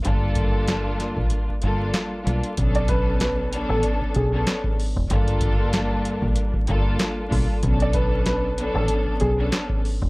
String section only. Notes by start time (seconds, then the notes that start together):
0.04 G3 A#3 D4 F4 A4
1.62 G3 A#3 D4 F4 A4
2.23 G3 A#3 D4 F4 A4
2.57 F#3 B3 C#4 D4 A4
3.51 F#3 B3 C#4 D4 A4
4.31 F#3 B3 C#4 D4 A4
5.09 G3 A#3 D4 F4 A4
6.67 G3 A#3 D4 F4 A4
7.28 G3 A#3 D4 F4 A4
7.63 F#3 B3 C#4 D4 A4
8.57 F#3 B3 C#4 D4 A4
9.37 F#3 B3 C#4 D4 A4